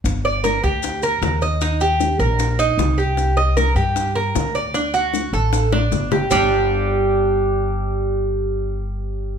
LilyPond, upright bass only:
\new Staff \with { instrumentName = "Upright bass" } { \clef bass \time 4/4 \key g \minor \tempo 4 = 153 g,,4. d,4. ees,4~ | ees,4. bes,,4. c,4~ | c,4. g,4. d,4~ | d,4. a,,4. g,,4 |
g,,1~ | g,,1 | }